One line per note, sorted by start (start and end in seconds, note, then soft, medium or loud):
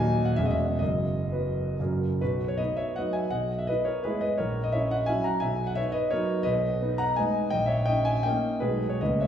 0.00 0.34 D#1 medium
0.00 0.34 D#2 medium
0.00 0.33 F#3 soft
0.00 0.33 A#3 soft
0.00 0.33 D#4 medium
0.00 0.38 D#5 medium
0.00 0.25 G#5 medium
0.25 0.36 F#5 medium
0.36 0.81 E1 medium
0.36 0.80 E2 medium
0.36 0.78 G#3 soft
0.36 0.78 C#4 soft
0.36 0.79 G#4 soft
0.36 0.44 E5 medium
0.45 0.53 D#5 medium
0.51 0.80 E5 medium
0.79 1.76 F#1 soft
0.79 1.76 F#2 medium
0.79 1.78 D#5 medium
1.31 1.76 F#3 soft
1.31 1.76 B3 soft
1.31 1.76 B4 soft
1.80 2.21 F#1 soft
1.80 2.21 F#2 soft
1.80 2.19 F#3 soft
1.80 2.19 C#4 soft
1.80 2.19 A#4 soft
2.21 2.59 B1 soft
2.21 2.48 F#4 medium
2.21 2.49 B4 medium
2.48 2.59 C#5 medium
2.58 2.93 B3 soft
2.58 2.94 D#4 soft
2.58 2.77 B4 medium
2.58 2.77 D#5 medium
2.77 2.95 C#5 medium
2.77 2.96 E5 medium
2.96 3.29 F#3 soft
2.96 3.30 B3 soft
2.96 3.30 D#4 soft
2.96 3.14 D#5 medium
2.96 3.14 F#5 medium
3.13 3.31 E5 medium
3.13 3.31 G#5 medium
3.30 3.68 B1 soft
3.30 3.57 D#5 medium
3.30 3.58 F#5 medium
3.59 3.69 E5 medium
3.67 4.02 B3 soft
3.67 4.03 E4 soft
3.67 3.86 B4 medium
3.67 3.87 D#5 medium
3.85 4.04 A#4 medium
3.85 4.04 C#5 medium
4.04 4.37 G#3 soft
4.04 4.37 B3 soft
4.04 4.37 E4 soft
4.04 4.21 G#4 medium
4.04 4.20 B4 medium
4.21 4.38 B4 soft
4.21 4.39 D#5 medium
4.38 4.74 A#1 soft
4.38 4.63 A#4 medium
4.38 4.65 C#5 medium
4.64 4.74 D#5 medium
4.72 5.07 C#4 soft
4.72 5.07 E4 soft
4.72 4.91 C#5 medium
4.72 4.92 E5 medium
4.91 5.08 D#5 medium
4.91 5.10 F#5 medium
5.06 5.40 F#3 soft
5.06 5.39 C#4 soft
5.06 5.40 E4 soft
5.06 5.24 E5 medium
5.06 5.25 G#5 medium
5.24 5.41 F#5 medium
5.24 5.42 A#5 medium
5.40 5.77 B1 medium
5.40 5.66 E5 medium
5.40 5.68 G#5 medium
5.67 5.77 F#5 medium
5.75 6.10 B3 soft
5.75 6.10 D#4 soft
5.75 5.94 C#5 medium
5.75 5.95 E5 medium
5.92 6.11 B4 medium
5.92 6.11 D#5 medium
6.11 6.43 F#3 soft
6.11 6.43 B3 soft
6.11 6.44 D#4 medium
6.11 6.44 A#4 medium
6.11 6.45 C#5 medium
6.43 6.81 B1 medium
6.43 6.95 B4 medium
6.43 6.98 D#5 medium
6.82 7.15 B3 soft
6.82 7.15 D#4 soft
6.98 7.16 F#5 medium
6.98 7.17 A#5 medium
7.16 7.49 G#3 soft
7.16 7.49 B3 soft
7.16 7.49 D#4 medium
7.16 7.49 D#5 medium
7.16 7.51 G#5 medium
7.50 7.86 A#1 medium
7.50 7.67 D#5 medium
7.50 7.68 G5 medium
7.66 7.85 C#5 medium
7.66 7.86 E5 medium
7.86 8.22 C#4 soft
7.86 8.22 D#4 soft
7.86 8.04 D#5 medium
7.86 8.05 G5 medium
8.05 8.24 E5 medium
8.05 8.24 G#5 medium
8.23 8.59 A#3 soft
8.23 8.59 C#4 soft
8.23 8.59 D#4 medium
8.23 8.59 D#5 medium
8.23 8.61 G5 medium
8.60 9.00 B1 medium
8.60 8.97 G#3 soft
8.60 8.98 B3 soft
8.60 8.98 D#4 soft
8.60 8.89 G#4 medium
8.60 8.90 B4 medium
8.90 9.00 C#5 medium
9.01 9.27 C#2 soft
9.01 9.27 G#3 soft
9.01 9.27 A#3 soft
9.01 9.27 C#4 soft
9.01 9.20 B4 soft
9.01 9.21 D#5 medium
9.21 9.27 C#5 soft
9.21 9.27 E5 medium